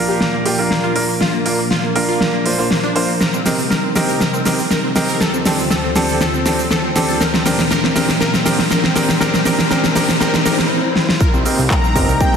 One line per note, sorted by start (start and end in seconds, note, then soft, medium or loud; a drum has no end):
0.00 3.17 A#2 medium
0.00 3.17 F3 medium
0.00 0.43 A#3 medium
0.00 0.43 D4 medium
0.00 3.17 D4 medium
0.00 0.43 F4 medium
0.00 0.43 A#4 loud
0.00 5.17 A#4 medium
0.09 0.18 G4 medium
0.21 0.31 A#3 medium
0.21 snare medium
0.34 0.43 A#3 medium
0.46 0.56 A#3 medium
0.46 0.56 D4 medium
0.46 0.56 F4 medium
0.46 0.56 G4 loud
0.46 open hi-hat loud
0.59 0.68 A#3 medium
0.59 0.93 A#3 medium
0.59 0.93 D4 medium
0.59 0.93 F4 medium
0.59 0.93 A#4 medium
0.71 0.81 A#3 medium
0.71 snare medium
0.84 0.93 F4 medium
0.96 1.06 A#3 medium
0.96 1.03 A#3 medium
0.96 1.03 D4 medium
0.96 1.03 F4 medium
0.96 1.03 A#4 medium
0.96 open hi-hat loud
1.09 1.18 A#3 medium
1.20 1.31 F4 medium
1.20 snare medium
1.34 1.43 A#3 medium
1.46 1.56 A#3 medium
1.46 1.57 A#3 medium
1.46 1.57 D4 medium
1.46 1.57 F4 medium
1.46 1.57 A#4 medium
1.46 open hi-hat loud
1.59 1.68 A#3 medium
1.70 1.81 F4 medium
1.70 snare medium
1.84 1.93 A#3 medium
1.95 2.06 A#3 medium
1.95 2.43 A#3 medium
1.95 2.43 D4 medium
1.95 2.43 F4 medium
1.95 2.43 A#4 loud
1.95 open hi-hat loud
2.09 2.18 F4 medium
2.20 2.31 A#3 medium
2.20 snare medium
2.34 2.43 A#3 medium
2.46 2.56 A#3 medium
2.46 2.56 D4 medium
2.46 2.56 F4 medium
2.46 2.56 C5 medium
2.46 open hi-hat loud
2.59 2.65 A#3 medium
2.59 2.68 A#3 medium
2.59 2.65 D4 medium
2.59 2.65 F4 medium
2.59 2.65 C5 medium
2.70 2.81 A#3 medium
2.70 snare medium
2.84 2.93 D4 medium
2.95 3.06 A#3 medium
2.95 3.07 A#3 medium
2.95 3.07 D4 medium
2.95 3.07 F4 medium
2.95 3.07 C5 loud
2.95 open hi-hat loud
3.09 3.18 A#3 medium
3.21 5.19 C3 medium
3.21 5.19 G3 medium
3.21 5.19 D#4 medium
3.21 3.31 A#4 medium
3.21 snare medium
3.21 riser medium
3.21 shaker soft
3.34 3.43 C4 medium
3.34 shaker soft
3.45 3.56 C4 medium
3.45 3.57 C4 medium
3.45 3.57 D#4 medium
3.45 3.57 G4 medium
3.45 3.57 A#4 medium
3.45 snare medium
3.45 open hi-hat loud
3.45 shaker medium
3.59 3.68 C4 medium
3.59 shaker soft
3.70 3.81 A#4 medium
3.70 snare medium
3.70 shaker soft
3.84 3.93 C4 medium
3.95 4.06 C4 medium
3.95 4.19 C4 medium
3.95 4.19 D#4 medium
3.95 4.19 G4 medium
3.95 4.19 A#4 medium
3.95 snare medium
3.95 open hi-hat loud
3.95 shaker medium
4.09 4.18 A#4 medium
4.09 shaker soft
4.21 4.31 A#4 medium
4.21 snare medium
4.21 shaker soft
4.34 4.43 C4 medium
4.34 shaker soft
4.45 4.57 C4 medium
4.45 4.56 C4 medium
4.45 4.57 D#4 medium
4.45 4.57 G4 medium
4.45 4.57 A#4 medium
4.45 snare medium
4.45 open hi-hat loud
4.45 shaker medium
4.59 4.68 C4 medium
4.59 shaker soft
4.71 4.81 A#4 medium
4.71 snare medium
4.71 shaker soft
4.84 4.93 C4 medium
4.95 5.06 C4 medium
4.95 5.19 C4 medium
4.95 5.19 D#4 medium
4.95 5.19 G4 medium
4.95 5.19 A#4 loud
4.95 snare medium
4.95 open hi-hat loud
4.95 shaker medium
5.09 5.18 A#4 medium
5.09 shaker soft
5.20 7.19 D2 medium
5.20 7.19 D3 medium
5.20 7.19 F4 medium
5.20 5.31 A4 medium
5.20 7.19 C5 medium
5.20 snare medium
5.20 shaker soft
5.34 5.43 C4 medium
5.34 shaker soft
5.46 5.57 C4 medium
5.46 5.56 C4 medium
5.46 5.57 D4 medium
5.46 5.57 G4 medium
5.46 5.57 A4 medium
5.46 snare medium
5.46 open hi-hat loud
5.46 shaker medium
5.59 5.68 C4 medium
5.59 shaker soft
5.71 5.81 A4 medium
5.71 snare medium
5.71 shaker soft
5.84 5.93 C4 medium
5.95 6.19 C4 medium
5.95 6.06 C4 medium
5.95 6.19 D4 medium
5.95 6.19 G4 medium
5.95 6.19 A4 loud
5.95 snare medium
5.95 open hi-hat loud
5.95 shaker medium
6.09 6.18 A4 medium
6.09 shaker soft
6.21 6.31 A4 medium
6.21 snare medium
6.21 shaker soft
6.34 6.43 C4 medium
6.34 shaker soft
6.45 6.57 C4 medium
6.45 6.56 C4 medium
6.45 6.57 D4 medium
6.45 6.57 G4 medium
6.45 6.57 A4 medium
6.45 snare medium
6.45 open hi-hat loud
6.45 shaker medium
6.59 6.68 C4 medium
6.59 shaker soft
6.71 6.81 A4 medium
6.71 snare medium
6.71 shaker soft
6.84 6.93 C4 medium
6.96 7.06 C4 medium
6.96 7.19 C4 medium
6.96 7.19 D4 medium
6.96 7.19 G4 medium
6.96 7.19 A4 loud
6.96 snare medium
6.96 open hi-hat loud
6.96 shaker medium
7.09 7.18 A4 medium
7.09 shaker soft
7.21 10.67 A#2 medium
7.21 10.67 F3 medium
7.21 10.67 D4 medium
7.21 7.31 A#4 medium
7.21 10.67 A#4 medium
7.21 snare medium
7.21 shaker soft
7.34 7.43 C4 medium
7.34 snare medium
7.34 shaker soft
7.45 7.57 C4 medium
7.45 7.56 C4 medium
7.45 7.57 D4 medium
7.45 7.57 G4 medium
7.45 7.57 A#4 medium
7.45 snare medium
7.45 open hi-hat loud
7.45 shaker medium
7.59 7.68 C4 medium
7.59 snare medium
7.59 shaker soft
7.71 7.81 A#4 loud
7.71 snare medium
7.71 shaker soft
7.84 7.93 C4 medium
7.84 snare medium
7.95 8.06 C4 medium
7.95 8.07 C4 medium
7.95 8.07 D4 medium
7.95 8.07 G4 medium
7.95 8.07 A#4 medium
7.95 snare medium
7.95 open hi-hat loud
7.95 shaker medium
8.09 8.18 C4 medium
8.09 snare medium
8.09 shaker soft
8.20 8.31 A#4 loud
8.20 snare medium
8.20 shaker soft
8.34 8.43 C4 medium
8.34 snare medium
8.34 shaker soft
8.45 8.56 C4 medium
8.45 8.57 C4 medium
8.45 8.57 D4 medium
8.45 8.57 G4 medium
8.45 8.57 A#4 medium
8.45 snare loud
8.45 open hi-hat loud
8.45 shaker medium
8.59 8.68 C4 medium
8.59 snare medium
8.59 shaker soft
8.71 8.81 A#4 medium
8.71 snare loud
8.71 shaker soft
8.84 8.93 C4 medium
8.84 snare medium
8.95 9.07 C4 medium
8.95 9.06 C4 medium
8.95 9.07 D4 medium
8.95 9.07 G4 medium
8.95 9.07 A#4 medium
8.95 snare loud
8.95 open hi-hat loud
8.95 shaker medium
9.09 9.18 C4 medium
9.09 snare medium
9.09 shaker soft
9.20 9.32 C4 medium
9.20 9.32 D4 medium
9.20 9.32 G4 medium
9.20 9.32 A#4 medium
9.20 9.31 A#4 loud
9.20 snare loud
9.20 shaker soft
9.34 9.43 C4 medium
9.34 snare medium
9.34 shaker soft
9.45 9.57 C4 medium
9.45 9.57 D4 medium
9.45 9.57 G4 medium
9.45 9.57 A#4 medium
9.45 9.56 A#4 loud
9.45 snare loud
9.45 open hi-hat loud
9.45 shaker medium
9.59 9.68 C4 medium
9.59 snare medium
9.59 shaker soft
9.71 9.82 C4 medium
9.71 9.82 D4 medium
9.71 9.82 G4 medium
9.71 9.81 A#4 loud
9.71 9.82 A#4 medium
9.71 snare loud
9.71 shaker soft
9.84 9.93 C4 medium
9.84 snare medium
9.84 shaker soft
9.95 10.07 C4 medium
9.95 10.07 D4 medium
9.95 10.07 G4 medium
9.95 10.07 A#4 medium
9.95 10.06 A#4 loud
9.95 snare loud
9.95 open hi-hat loud
9.95 shaker medium
10.09 10.18 C4 medium
10.09 snare loud
10.09 shaker soft
10.20 10.32 C4 medium
10.20 10.32 D4 medium
10.20 10.32 G4 medium
10.20 10.31 A#4 loud
10.20 10.32 A#4 medium
10.20 snare loud
10.20 swell medium
10.20 shaker soft
10.34 10.43 C4 medium
10.34 snare medium
10.34 shaker soft
10.45 10.57 C4 medium
10.45 10.57 D4 medium
10.45 10.57 G4 medium
10.45 10.56 A#4 loud
10.45 10.57 A#4 medium
10.45 snare loud
10.45 open hi-hat loud
10.45 shaker medium
10.59 10.68 C4 medium
10.59 snare medium
10.59 shaker soft
10.96 snare medium
11.09 snare medium
11.21 12.37 C3 medium
11.21 12.37 G3 medium
11.21 12.37 A#3 medium
11.21 12.37 D#4 medium
11.21 11.31 A#4 loud
11.21 kick loud
11.21 downlifter medium
11.21 shaker soft
11.34 11.44 C2 medium
11.34 11.43 C4 medium
11.34 shaker soft
11.46 11.56 C4 medium
11.46 11.57 C4 medium
11.46 11.57 D#4 medium
11.46 11.57 G4 medium
11.46 11.57 A#4 medium
11.46 open hi-hat loud
11.46 shaker medium
11.59 11.69 C2 medium
11.59 11.68 C4 medium
11.59 shaker soft
11.70 11.81 A#4 loud
11.70 12.22 A#5 loud
11.70 12.17 A#5 loud
11.70 kick loud
11.70 clap loud
11.70 shaker soft
11.84 11.93 C4 medium
11.84 shaker soft
11.96 12.07 G1 loud
11.96 12.06 C4 medium
11.96 12.37 C4 medium
11.96 12.37 D#4 medium
11.96 12.37 G4 medium
11.96 12.37 A#4 loud
11.96 kick medium
11.96 open hi-hat loud
11.96 shaker medium
12.09 12.19 C2 medium
12.09 12.18 A#4 medium
12.09 shaker soft
12.21 12.31 C4 medium
12.21 12.35 G5 loud
12.21 12.33 G5 loud
12.21 kick loud
12.21 shaker soft
12.34 12.37 C2 medium
12.34 12.37 C4 medium